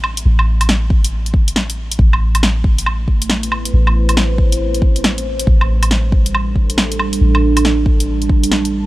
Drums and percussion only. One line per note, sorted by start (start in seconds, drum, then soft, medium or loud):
0.04 low woodblock medium
0.17 closed hi-hat medium
0.39 low woodblock medium
0.61 closed hi-hat medium
0.61 low woodblock soft
0.69 snare loud
0.90 kick loud
1.04 closed hi-hat medium
1.26 closed hi-hat soft
1.34 kick loud
1.48 closed hi-hat medium
1.56 snare loud
1.70 closed hi-hat soft
1.92 closed hi-hat medium
1.99 kick loud
2.13 low woodblock medium
2.35 closed hi-hat medium
2.35 low woodblock medium
2.43 snare loud
2.64 kick loud
2.78 closed hi-hat medium
2.86 low woodblock medium
3.08 kick medium
3.22 closed hi-hat medium
3.30 snare loud
3.43 closed hi-hat soft
3.52 low woodblock medium
3.65 closed hi-hat medium
3.87 low woodblock medium
4.09 closed hi-hat medium
4.09 low woodblock soft
4.17 snare loud
4.38 kick loud
4.52 closed hi-hat medium
4.74 closed hi-hat soft
4.82 kick loud
4.96 closed hi-hat medium
5.04 snare loud
5.18 closed hi-hat soft
5.39 closed hi-hat medium
5.47 kick loud
5.61 low woodblock medium
5.83 closed hi-hat medium
5.83 low woodblock soft
5.91 snare loud
6.12 kick loud
6.26 closed hi-hat soft
6.35 low woodblock medium
6.56 kick medium
6.70 closed hi-hat medium
6.78 snare loud
6.92 closed hi-hat soft
7.00 low woodblock medium
7.13 closed hi-hat medium
7.35 low woodblock medium
7.57 closed hi-hat medium
7.57 low woodblock medium
7.65 snare loud
7.86 kick loud
8.00 closed hi-hat medium
8.22 closed hi-hat soft
8.29 kick loud
8.44 closed hi-hat medium
8.52 snare loud
8.65 closed hi-hat soft